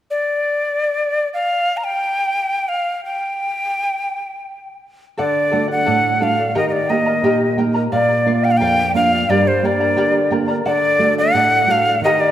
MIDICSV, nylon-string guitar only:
0, 0, Header, 1, 2, 480
1, 0, Start_track
1, 0, Tempo, 685714
1, 748, Time_signature, 2, 2, 24, 8
1, 8621, End_track
2, 0, Start_track
2, 0, Title_t, "Nylon-string guitar"
2, 0, Program_c, 0, 24
2, 3634, Note_on_c, 0, 50, 55
2, 3870, Note_on_c, 0, 57, 42
2, 3873, Note_on_c, 0, 62, 42
2, 3874, Note_on_c, 0, 66, 50
2, 4098, Note_off_c, 0, 50, 0
2, 4110, Note_on_c, 0, 45, 62
2, 4255, Note_off_c, 0, 57, 0
2, 4255, Note_off_c, 0, 62, 0
2, 4257, Note_off_c, 0, 66, 0
2, 4346, Note_on_c, 0, 57, 39
2, 4349, Note_on_c, 0, 62, 37
2, 4353, Note_on_c, 0, 66, 46
2, 4540, Note_off_c, 0, 57, 0
2, 4543, Note_off_c, 0, 62, 0
2, 4543, Note_off_c, 0, 66, 0
2, 4576, Note_off_c, 0, 45, 0
2, 4590, Note_on_c, 0, 51, 52
2, 4827, Note_on_c, 0, 58, 46
2, 4830, Note_on_c, 0, 63, 36
2, 4832, Note_on_c, 0, 67, 48
2, 5056, Note_off_c, 0, 51, 0
2, 5058, Note_on_c, 0, 46, 60
2, 5213, Note_off_c, 0, 58, 0
2, 5213, Note_off_c, 0, 63, 0
2, 5215, Note_off_c, 0, 67, 0
2, 5300, Note_on_c, 0, 58, 43
2, 5306, Note_on_c, 0, 63, 39
2, 5310, Note_on_c, 0, 67, 50
2, 5497, Note_off_c, 0, 58, 0
2, 5499, Note_off_c, 0, 63, 0
2, 5502, Note_off_c, 0, 67, 0
2, 5529, Note_off_c, 0, 46, 0
2, 5544, Note_on_c, 0, 46, 59
2, 5781, Note_on_c, 0, 58, 47
2, 5784, Note_on_c, 0, 62, 40
2, 5787, Note_on_c, 0, 65, 51
2, 6012, Note_off_c, 0, 46, 0
2, 6024, Note_on_c, 0, 41, 61
2, 6169, Note_off_c, 0, 58, 0
2, 6169, Note_off_c, 0, 62, 0
2, 6169, Note_off_c, 0, 65, 0
2, 6258, Note_on_c, 0, 58, 46
2, 6266, Note_on_c, 0, 62, 41
2, 6268, Note_on_c, 0, 65, 45
2, 6454, Note_off_c, 0, 58, 0
2, 6459, Note_off_c, 0, 62, 0
2, 6460, Note_off_c, 0, 65, 0
2, 6492, Note_off_c, 0, 41, 0
2, 6499, Note_on_c, 0, 43, 57
2, 6739, Note_on_c, 0, 58, 40
2, 6741, Note_on_c, 0, 62, 38
2, 6742, Note_on_c, 0, 67, 47
2, 6968, Note_off_c, 0, 43, 0
2, 6978, Note_on_c, 0, 50, 53
2, 7126, Note_off_c, 0, 58, 0
2, 7126, Note_off_c, 0, 62, 0
2, 7128, Note_off_c, 0, 67, 0
2, 7215, Note_on_c, 0, 58, 41
2, 7220, Note_on_c, 0, 62, 38
2, 7222, Note_on_c, 0, 67, 43
2, 7411, Note_off_c, 0, 58, 0
2, 7415, Note_off_c, 0, 62, 0
2, 7415, Note_off_c, 0, 67, 0
2, 7447, Note_off_c, 0, 50, 0
2, 7460, Note_on_c, 0, 50, 51
2, 7692, Note_on_c, 0, 57, 46
2, 7696, Note_on_c, 0, 62, 39
2, 7701, Note_on_c, 0, 66, 49
2, 7927, Note_off_c, 0, 50, 0
2, 7937, Note_on_c, 0, 45, 58
2, 8080, Note_off_c, 0, 57, 0
2, 8083, Note_off_c, 0, 62, 0
2, 8085, Note_off_c, 0, 66, 0
2, 8170, Note_on_c, 0, 57, 39
2, 8173, Note_on_c, 0, 62, 39
2, 8177, Note_on_c, 0, 66, 50
2, 8367, Note_off_c, 0, 57, 0
2, 8369, Note_off_c, 0, 62, 0
2, 8371, Note_off_c, 0, 66, 0
2, 8404, Note_off_c, 0, 45, 0
2, 8410, Note_on_c, 0, 51, 54
2, 8621, Note_off_c, 0, 51, 0
2, 8621, End_track
0, 0, End_of_file